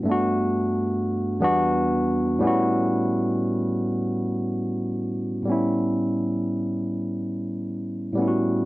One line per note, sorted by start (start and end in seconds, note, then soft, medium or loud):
0.03 1.36 G2 medium
0.03 1.38 A3 medium
0.07 1.39 B3 medium
0.07 1.40 D4 medium
0.11 1.41 F#4 medium
1.40 2.41 E2 medium
1.40 2.39 G3 medium
1.40 2.41 B3 medium
1.40 2.43 D4 medium
1.44 2.44 F#4 medium
2.39 5.06 A2 medium
2.39 5.07 G3 medium
2.39 5.08 B3 medium
2.44 5.08 C#4 medium
2.44 5.09 E4 medium
2.44 5.10 F#4 medium
5.43 8.10 A2 medium
5.43 8.11 G3 medium
5.47 8.12 B3 medium
5.47 8.13 C#4 medium
5.52 8.14 E4 medium
8.13 8.65 A2 medium
8.13 8.65 G3 medium
8.17 8.65 B3 medium
8.17 8.65 C#4 medium
8.22 8.26 E4 soft
8.28 8.65 F#4 medium